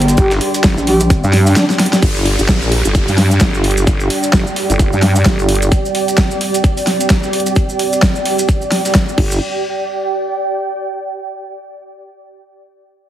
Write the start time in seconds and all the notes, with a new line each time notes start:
Already playing: G1 G3 D4 G4 D5 G5 C6
0.02 closed hi-hat
0.08 snare, closed hi-hat, maracas
0.17 G1 G4, kick, closed hi-hat, maracas
0.31 snare, closed hi-hat, maracas
0.41 snare, open hi-hat
0.54 closed hi-hat, maracas
0.64 G1, kick, snare, closed hi-hat, maracas
0.78 A#1, snare, maracas
0.87 G4, closed hi-hat, open hi-hat
1.00 closed hi-hat, maracas
1.10 kick, closed hi-hat, maracas
1.24 G2, maracas
1.33 snare, closed hi-hat, open hi-hat
1.47 D4, snare, open hi-hat, maracas
1.56 D4, snare, closed hi-hat, maracas
1.70 snare, maracas
1.79 snare, closed hi-hat, open hi-hat
1.86 closed hi-hat
1.93 snare, closed hi-hat, maracas
2.02 G1 G3 D4 G4 D5, kick, closed hi-hat, downlifter, maracas
2.16 maracas
2.26 closed hi-hat, open hi-hat
2.39 G1, closed hi-hat, maracas
2.48 A#1, kick, snare, closed hi-hat, maracas
2.62 maracas
2.71 G5, open hi-hat
2.85 G1 D5, closed hi-hat, maracas
2.95 kick, closed hi-hat, maracas
3.08 G2, open hi-hat, maracas
3.18 snare, closed hi-hat, open hi-hat
3.31 closed hi-hat, maracas
3.40 G1, kick, snare, closed hi-hat, maracas
3.54 snare, maracas
3.64 closed hi-hat, open hi-hat
3.71 closed hi-hat
3.78 closed hi-hat, maracas
3.87 G1, kick, closed hi-hat, maracas
4.00 maracas
4.10 closed hi-hat, open hi-hat
4.23 closed hi-hat, maracas
4.33 G1, kick, snare, closed hi-hat, maracas
4.47 maracas
4.56 snare, closed hi-hat, open hi-hat
4.70 G1, closed hi-hat, maracas
4.79 kick, closed hi-hat, maracas
4.93 G2, maracas
5.02 snare, closed hi-hat, open hi-hat
5.16 snare, open hi-hat, maracas
5.25 G1, kick, snare, closed hi-hat, maracas
5.39 maracas
5.49 closed hi-hat, open hi-hat
5.55 closed hi-hat
5.62 closed hi-hat, maracas
5.72 C4, kick, closed hi-hat, maracas
5.85 maracas
5.95 closed hi-hat, open hi-hat
6.08 closed hi-hat, maracas
6.18 kick, snare, closed hi-hat, maracas
6.31 maracas
6.41 open hi-hat
6.54 closed hi-hat, maracas
6.64 kick, closed hi-hat, maracas
6.77 open hi-hat, maracas
6.87 snare, closed hi-hat, open hi-hat
7.01 closed hi-hat, maracas
7.10 kick, snare, closed hi-hat, maracas
7.23 snare, maracas
7.33 closed hi-hat, open hi-hat
7.40 closed hi-hat
7.46 closed hi-hat, maracas
7.56 kick, closed hi-hat, maracas
7.69 maracas
7.79 closed hi-hat, open hi-hat
7.93 closed hi-hat, maracas
8.02 kick, snare, closed hi-hat, maracas
8.15 maracas
8.26 snare, closed hi-hat, open hi-hat
8.39 closed hi-hat, maracas
8.49 kick, closed hi-hat, maracas
8.62 maracas
8.72 snare, closed hi-hat, open hi-hat
8.85 snare, open hi-hat, maracas
8.95 kick, snare, closed hi-hat, maracas
9.09 maracas
9.18 G1 G4, kick, crash
9.26 D5
9.32 maracas
9.56 G5